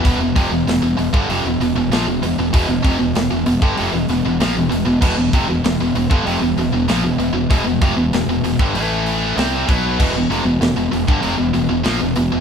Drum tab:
CC |----------------|----------------|x---------------|----------------|
HH |o-o-o-o-o-o-o-o-|o-o-o-o-o-o-o-o-|--o-o-o-o-o-o-o-|o-o-o-o-o-o-o-o-|
SD |----o-------o---|----o-------o---|----o-------o---|----o-------o---|
BD |o-o----o--------|o-o----o--------|o-o----o--------|o-o----o------o-|

CC |x---------------|
HH |--o-o-o-o-o-o-o-|
SD |----o-------o---|
BD |o------o--------|